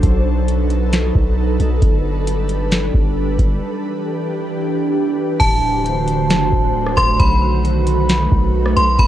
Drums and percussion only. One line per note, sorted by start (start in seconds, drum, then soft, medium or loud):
0.03 kick loud
0.03 closed hi-hat medium
0.48 closed hi-hat medium
0.70 closed hi-hat medium
0.93 snare loud
0.93 closed hi-hat medium
1.15 kick medium
1.60 closed hi-hat medium
1.82 kick loud
1.82 closed hi-hat medium
2.27 closed hi-hat medium
2.49 closed hi-hat medium
2.72 snare loud
2.72 closed hi-hat medium
2.94 kick medium
3.39 kick loud
3.39 closed hi-hat medium
5.40 kick loud
5.40 closed hi-hat medium
5.40 crash loud
5.86 closed hi-hat medium
6.08 closed hi-hat medium
6.30 snare loud
6.30 closed hi-hat medium
6.53 kick medium
6.87 cross-stick medium
6.97 kick loud
6.97 cross-stick loud
6.97 closed hi-hat medium
7.20 kick loud
7.20 closed hi-hat medium
7.65 closed hi-hat medium
7.87 closed hi-hat medium
8.09 snare loud
8.09 closed hi-hat medium
8.32 kick medium
8.66 cross-stick medium
8.77 closed hi-hat medium
8.99 kick loud
8.99 closed hi-hat medium